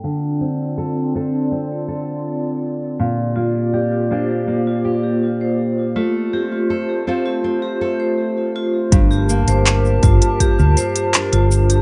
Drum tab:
HH |----------------|----------------|----------------|x--xx-xxx-xxxx-x|
SH |----------------|----------------|----------------|xxxxxxxxxxxxxxxx|
CP |----------------|----------------|----------------|----x-------x---|
BD |----------------|----------------|----------------|o-----o-o-------|